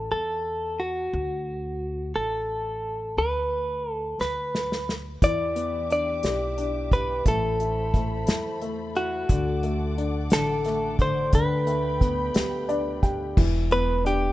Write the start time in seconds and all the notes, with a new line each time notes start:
Already playing: A4
0.11 E2 A4
0.80 F#4
1.13 D2
2.16 A1 A4
3.17 D2 B4
3.91 A4
4.20 D2 B4, snare
4.55 snare
4.72 snare
4.89 snare
5.22 E2 E3 G4 D5 E5 D6, kick, closed hi-hat
5.55 B3, closed hi-hat
5.90 D4 D5, closed hi-hat
6.23 B1 G4, snare, closed hi-hat
6.58 D4, closed hi-hat
6.91 G4 B4, kick, closed hi-hat
7.25 A1 A3 A4 C5 B5, kick, closed hi-hat
7.60 E4, closed hi-hat
7.94 A3, kick, closed hi-hat
8.27 E2 E4, snare, closed hi-hat
8.62 A3, closed hi-hat
8.95 E4 F#4, closed hi-hat
9.29 D2 D3 F#5 D6, kick, closed hi-hat
9.63 A3, closed hi-hat
9.98 D4, closed hi-hat
10.30 A1 D3 A4, snare, closed hi-hat
10.64 A3, snare, closed hi-hat
10.99 D3 C5, kick, closed hi-hat
11.33 D2 D3 B4 G5 B5, kick, closed hi-hat
11.67 A3, closed hi-hat
12.01 B3, kick, closed hi-hat
12.34 D2 G4, snare, closed hi-hat
12.69 D4 D5, closed hi-hat
13.03 G4 G5, kick, closed hi-hat
13.37 E1 E3, kick, crash
13.71 B3 B4, closed hi-hat
14.05 D4 G4, closed hi-hat